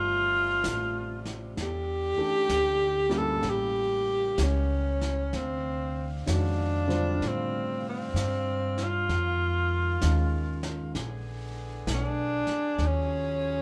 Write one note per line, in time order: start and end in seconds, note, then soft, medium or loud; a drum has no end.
0.00 0.61 G1 medium
0.00 1.53 C3 medium
0.00 0.20 D#3 medium
0.00 0.21 G3 soft
0.00 3.39 G3 medium
0.00 1.53 A3 medium
0.00 0.21 C4 soft
0.00 0.21 F4 medium
0.00 1.30 F4 loud
0.00 1.53 F4 medium
0.64 1.54 A1 medium
0.64 snare medium
0.64 hi-hat pedal medium
1.25 snare soft
1.55 2.15 E2 medium
1.55 3.41 D3 medium
1.55 3.41 A4 medium
1.55 brush sweep soft
1.55 snare soft
1.62 3.20 G4 loud
2.17 3.05 E3 medium
2.17 3.05 A3 soft
2.17 3.06 D4 soft
2.17 3.06 G4 medium
2.17 muted upright bass stroke soft
2.49 3.40 D2 medium
2.49 snare medium
2.49 hi-hat pedal soft
3.09 4.31 G3 medium
3.09 4.31 A#3 medium
3.09 4.32 C#4 medium
3.09 4.31 E4 medium
3.09 snare soft
3.18 3.51 A4 medium
3.42 4.35 A1 medium
3.42 5.15 C#3 medium
3.42 5.15 A#3 medium
3.42 5.15 G4 medium
3.42 brush sweep soft
3.42 snare soft
3.50 4.44 G4 medium
4.38 5.30 C#2 medium
4.38 snare medium
4.38 hi-hat pedal medium
4.43 5.38 C#4 medium
5.01 snare soft
5.32 6.25 D2 medium
5.32 9.04 C3 medium
5.32 9.05 D4 medium
5.32 10.90 F5 medium
5.32 brush sweep soft
5.32 snare soft
5.36 6.11 C4 medium
6.26 7.19 F2 medium
6.26 6.83 D#3 soft
6.26 6.83 G#3 soft
6.26 6.83 F#4 soft
6.26 6.83 C#5 soft
6.26 snare medium
6.26 hi-hat pedal medium
6.33 7.29 D4 medium
6.87 7.70 D3 soft
6.87 7.70 G3 soft
6.87 7.71 C4 soft
6.87 7.71 F4 medium
6.87 snare soft
7.21 8.12 A2 medium
7.21 brush sweep soft
7.21 snare soft
7.27 7.86 C4 medium
7.89 8.85 C4 medium
8.14 9.05 G2 medium
8.14 snare medium
8.14 hi-hat pedal medium
8.78 snare soft
8.83 10.66 F4 medium
9.09 9.99 F2 medium
9.09 10.92 D#3 medium
9.09 10.92 G#3 medium
9.09 brush sweep soft
9.09 snare soft
10.02 10.92 D#2 medium
10.02 10.94 D#3 soft
10.02 10.94 G#3 soft
10.02 10.95 C#4 soft
10.02 10.95 F4 medium
10.02 snare medium
10.02 hi-hat pedal medium
10.63 snare soft
10.94 11.84 A#1 medium
10.94 12.60 D3 medium
10.94 12.60 B3 medium
10.94 13.62 G#4 medium
10.94 brush sweep soft
10.94 snare soft
11.87 12.43 B1 medium
11.87 snare medium
11.87 hi-hat pedal medium
11.95 12.88 D4 medium
12.47 muted upright bass stroke soft
12.47 snare soft
12.77 13.62 D#2 medium
12.77 13.62 F#3 medium
12.77 13.62 C#4 medium
12.77 13.62 F4 medium
12.77 brush sweep soft
12.77 snare soft
12.86 13.62 C#4 medium